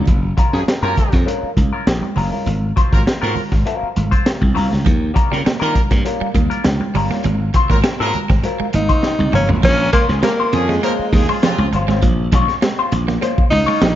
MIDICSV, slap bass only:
0, 0, Header, 1, 3, 480
1, 0, Start_track
1, 0, Key_signature, -5, "minor"
1, 0, Tempo, 597015
1, 61, Time_signature, 4, 2, 24, 8
1, 11219, End_track
2, 0, Start_track
2, 0, Title_t, "Slap bass"
2, 0, Program_c, 0, 36
2, 62, Note_on_c, 0, 30, 105
2, 261, Note_off_c, 0, 30, 0
2, 427, Note_on_c, 0, 42, 76
2, 522, Note_off_c, 0, 42, 0
2, 664, Note_on_c, 0, 42, 96
2, 760, Note_off_c, 0, 42, 0
2, 909, Note_on_c, 0, 41, 87
2, 1003, Note_off_c, 0, 41, 0
2, 1261, Note_on_c, 0, 37, 68
2, 1368, Note_off_c, 0, 37, 0
2, 1502, Note_on_c, 0, 34, 71
2, 1608, Note_off_c, 0, 34, 0
2, 1740, Note_on_c, 0, 30, 82
2, 1847, Note_off_c, 0, 30, 0
2, 1981, Note_on_c, 0, 32, 108
2, 2182, Note_off_c, 0, 32, 0
2, 2353, Note_on_c, 0, 32, 85
2, 2446, Note_off_c, 0, 32, 0
2, 2595, Note_on_c, 0, 44, 87
2, 2688, Note_off_c, 0, 44, 0
2, 2828, Note_on_c, 0, 32, 83
2, 2924, Note_off_c, 0, 32, 0
2, 3192, Note_on_c, 0, 32, 77
2, 3295, Note_off_c, 0, 32, 0
2, 3551, Note_on_c, 0, 36, 89
2, 3646, Note_off_c, 0, 36, 0
2, 3679, Note_on_c, 0, 36, 90
2, 3779, Note_off_c, 0, 36, 0
2, 3800, Note_on_c, 0, 37, 92
2, 3891, Note_off_c, 0, 37, 0
2, 3906, Note_on_c, 0, 39, 105
2, 4106, Note_off_c, 0, 39, 0
2, 4280, Note_on_c, 0, 49, 79
2, 4371, Note_off_c, 0, 49, 0
2, 4516, Note_on_c, 0, 51, 90
2, 4609, Note_off_c, 0, 51, 0
2, 4751, Note_on_c, 0, 43, 89
2, 4846, Note_off_c, 0, 43, 0
2, 5100, Note_on_c, 0, 39, 79
2, 5209, Note_off_c, 0, 39, 0
2, 5347, Note_on_c, 0, 37, 93
2, 5453, Note_off_c, 0, 37, 0
2, 5590, Note_on_c, 0, 31, 79
2, 5695, Note_off_c, 0, 31, 0
2, 5830, Note_on_c, 0, 32, 112
2, 6028, Note_off_c, 0, 32, 0
2, 6188, Note_on_c, 0, 32, 77
2, 6284, Note_off_c, 0, 32, 0
2, 6434, Note_on_c, 0, 44, 89
2, 6528, Note_off_c, 0, 44, 0
2, 6670, Note_on_c, 0, 32, 91
2, 6766, Note_off_c, 0, 32, 0
2, 7027, Note_on_c, 0, 32, 84
2, 7133, Note_off_c, 0, 32, 0
2, 7396, Note_on_c, 0, 36, 100
2, 7489, Note_off_c, 0, 36, 0
2, 7504, Note_on_c, 0, 30, 87
2, 7611, Note_off_c, 0, 30, 0
2, 7633, Note_on_c, 0, 32, 97
2, 7727, Note_off_c, 0, 32, 0
2, 7747, Note_on_c, 0, 34, 98
2, 7946, Note_off_c, 0, 34, 0
2, 8113, Note_on_c, 0, 37, 90
2, 8207, Note_off_c, 0, 37, 0
2, 8465, Note_on_c, 0, 41, 81
2, 8665, Note_off_c, 0, 41, 0
2, 8944, Note_on_c, 0, 39, 87
2, 9051, Note_off_c, 0, 39, 0
2, 9313, Note_on_c, 0, 37, 108
2, 9407, Note_off_c, 0, 37, 0
2, 9425, Note_on_c, 0, 31, 88
2, 9531, Note_off_c, 0, 31, 0
2, 9554, Note_on_c, 0, 32, 85
2, 9647, Note_off_c, 0, 32, 0
2, 9667, Note_on_c, 0, 34, 101
2, 9866, Note_off_c, 0, 34, 0
2, 9908, Note_on_c, 0, 34, 90
2, 10013, Note_off_c, 0, 34, 0
2, 10388, Note_on_c, 0, 34, 87
2, 10586, Note_off_c, 0, 34, 0
2, 10869, Note_on_c, 0, 37, 100
2, 10973, Note_off_c, 0, 37, 0
2, 11106, Note_on_c, 0, 34, 109
2, 11211, Note_off_c, 0, 34, 0
2, 11219, End_track
3, 0, Start_track
3, 0, Title_t, "Muted slap bass strokes"
3, 540, Note_on_c, 9, 29, 40
3, 620, Note_off_c, 9, 29, 0
3, 1151, Note_on_c, 9, 29, 44
3, 1231, Note_off_c, 9, 29, 0
3, 2465, Note_on_c, 9, 29, 44
3, 2546, Note_off_c, 9, 29, 0
3, 3079, Note_on_c, 9, 29, 46
3, 3159, Note_off_c, 9, 29, 0
3, 4397, Note_on_c, 9, 29, 49
3, 4477, Note_off_c, 9, 29, 0
3, 4993, Note_on_c, 9, 29, 49
3, 5073, Note_off_c, 9, 29, 0
3, 6308, Note_on_c, 9, 29, 46
3, 6389, Note_off_c, 9, 29, 0
3, 6919, Note_on_c, 9, 29, 50
3, 6999, Note_off_c, 9, 29, 0
3, 8838, Note_on_c, 9, 29, 48
3, 8919, Note_off_c, 9, 29, 0
3, 10757, Note_on_c, 9, 29, 48
3, 10838, Note_off_c, 9, 29, 0
3, 11219, End_track
0, 0, End_of_file